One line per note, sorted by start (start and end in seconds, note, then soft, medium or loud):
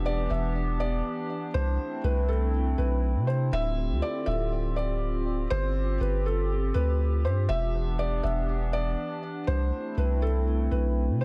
0.00 0.28 E1 loud
0.00 1.52 E3 medium
0.00 1.52 B3 medium
0.00 3.49 D4 medium
0.00 1.53 G4 medium
0.06 0.29 D5 medium
0.30 1.02 E1 loud
0.30 0.77 E5 medium
0.80 1.50 D5 medium
1.54 1.78 C2 loud
1.54 3.51 A3 medium
1.54 3.51 C4 medium
1.54 5.47 E4 medium
1.54 2.01 C5 loud
2.04 2.75 C2 loud
2.04 2.28 B4 medium
2.29 2.75 A4 medium
2.78 3.17 B1 loud
2.78 3.25 B4 medium
3.15 3.51 C3 loud
3.27 3.51 C5 medium
3.53 3.91 D1 loud
3.53 5.49 D3 medium
3.53 7.45 C4 medium
3.53 7.45 F4 medium
3.53 9.44 G4 medium
3.53 4.00 E5 loud
3.90 4.02 D2 loud
4.02 4.26 D5 medium
4.26 5.47 D1 loud
4.26 4.73 E5 medium
4.76 5.47 D5 medium
5.50 5.99 G1 loud
5.50 5.97 C5 loud
6.01 6.72 G1 loud
6.01 6.24 B4 medium
6.26 6.72 A4 medium
6.74 7.26 D2 loud
6.74 7.21 B4 medium
7.25 7.48 G2 loud
7.25 7.48 C5 medium
7.49 8.21 E1 loud
7.49 9.46 E3 medium
7.49 9.46 B3 medium
7.49 11.25 D4 medium
7.49 7.96 E5 loud
7.99 8.23 D5 medium
8.23 8.95 E1 loud
8.23 8.70 E5 medium
8.73 9.44 D5 medium
9.47 9.72 C2 loud
9.47 11.25 A3 medium
9.47 11.25 C4 medium
9.47 11.25 E4 medium
9.47 9.94 C5 medium
9.97 10.69 C2 loud
9.97 10.21 B4 medium
10.22 10.69 A4 medium
10.71 11.10 B1 loud
10.71 11.18 B4 medium
11.09 11.25 C3 medium
11.21 11.25 C5 medium